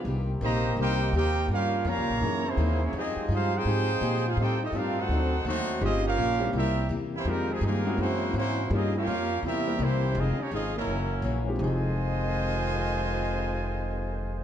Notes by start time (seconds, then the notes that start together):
0.05 C2 C3 D#3 A#3 C4 D#4 G4
0.41 A#1 C3 D#3 G3 A#3 D#4 G4 C5 D#5 A#5
0.77 C2 C3 G3 A#3 C4 D#4 G4
0.81 D#4 G4 A#4 C5 G5
1.13 D#2 C3 A#3 D#4 G4 A#4 C5 G5
1.48 G2 C#3 F3 G3 A#3 C#4 F4
1.53 C#4 G4 A#4 F5
1.85 F2 G2 C#3 F3 A#3 C#4 G4 C#5 F5 A#5
1.97 C#2
2.10 A#1
2.21 F#2 C#3 E3 F#3 A#3 C#4 D#4 E4 G#4
2.25 D#4
2.46 C#3 E3 A#3 C4 E4 G#4 C5
2.57 D#2 F#2 E3 A#3 D#4
2.81 E3 A#3 C#4 E4 G#4 C#5
2.93 F2 F3 G#3 C4 D#4 F4
2.97 C4 G4 G#4 D#5
3.16 muted upright bass stroke
3.29 G2 F3 G#3 C4 D#4 F4 G4
3.34 D#4 G#4 C5 F5
3.55 C4 D#4 G#4 C5 G5
3.65 G#2 F3 G#3 C4 D#4 G4
4.01 A#2 F3 G#3 D#4 G4
4.27 G#3 C4 D#4 F4 G#4 C5 F5
4.37 A2 G3 A3 C4 D#4 G4 A4 C5
4.41 G5
4.60 G3 C4 D#4 G4 A4 D#5
4.72 G2 A2 G3 C4 D#4 F4 F5
4.76 D4 G4 A#4
4.98 A3 C4 D#4 F#4 A4 C5 F#5
5.09 D2 D3 F#3 C4 D4 D#4 F#4 A4
5.45 D#2 D3 F#3 A3 C4 D#4 F#4 C5
5.81 G1 G2 F3 G3 A#3 C4 C#4 D#4 F4 G4 D#5
5.85 G#4
6.03 A#3 C#4 F4 G4 A#4 F5
6.17 A#1 G2 F3 A#3 C#4
6.39 G3 A#3 C4 E4 G4
6.52 C2 C3 G3 A#3 E4
6.56 C4 G4 A#4 E5
6.89 E2 C3 G3 A#3 E4
7.14 E3 G3 A#3 C4 E4 G4 C5
7.25 F2 D#3 G#3 A#3 C4 D#4 F4 G4 A#4
7.29 G3 C4
7.49 C3 D#3 G#3 C4 D#4 G#4
7.61 F2 G2 C3 D#3 G#3 A#3 C4
7.66 D#4 F4 G#4 A#4
7.85 G#3 A#3 C#4 E4 F#4
7.97 F#2 C#3 E3 A#3 C4 C#4
8.01 A#3 E4 F#4 C5
8.34 F#2 G#2 C#3 E3 A#3 C4 C#4 C5
8.38 A#3 E4 F#4
8.70 G2 F3 G3 A#3 C#4 D#4 F4 G4
8.74 C4 F4 G#4 D#5
8.94 A#3 C#4 F4 G4 A#4 F5
9.06 F2 G2 F3 A#3 C#4
9.43 E2 C3 G3 A#3 E4 G4 A#4
9.47 C4 E5
9.66 G3 A#3 C4 E4 A#4
9.78 C2 C3 E3 G3 A#3 C4 E4
9.83 A#3 E4 G4 C5
10.15 F1 F2 D#3 G#3 C4 D#4 F4 G#4 D#5
10.38 A#3 C#4 D#4 G4 C#5, muted upright bass stroke
10.51 G#1 F2 D#3 G#3 C4 D#4 F4 G#4 D#5
10.75 C#3 E3 F#3 A#3 C#4 E4 A#4
10.87 F#1 F#2 E3 A#3 C#4
11.22 A#1 F#2 E3 A#3 C#4
11.47 G#3 C4 D#4 F4 G4
11.56 F1 F2 C3 D#3 G#3
11.60 F2 D#3 F3 D#4 F4 G#4 C5 D#5 G#5
11.64 G#3 C4